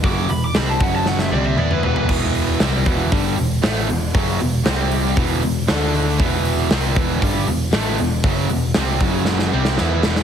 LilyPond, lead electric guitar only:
\new Staff \with { instrumentName = "Lead electric guitar" } { \time 4/4 \key e \minor \tempo 4 = 117 d'''8 b''16 d'''16 b''16 a''16 fis''16 a''16 fis''16 e''16 d''16 e''16 d''16 b'16 b'8 | r1 | r1 | r1 |
r1 | }